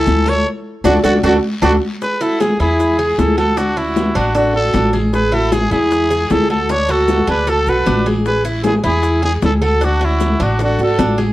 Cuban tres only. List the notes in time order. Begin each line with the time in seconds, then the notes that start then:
Already playing: G#5
0.26 A4
0.84 D4 F#4 A4
1.03 D4 F#4 A4
1.23 D4 F#4 A4
1.62 D4 F#4 A4
2.21 E4
2.40 G#4
2.60 E4
2.99 G#4
3.38 A4
3.57 D4
3.77 F#4
4.15 D4
4.35 A4
4.73 D4
4.93 G#4
5.32 E4
5.52 G#4
5.71 E4
6.11 G#4
6.50 A4
6.69 D4
6.89 F#4
7.27 D4
7.47 A4
7.86 D4
8.06 G#4
8.45 E4
8.64 G#4
8.84 E4
9.23 G#4
9.61 A4
9.81 D4
10.01 F#4
10.40 D4
10.59 A4
10.99 D4
11.18 G#4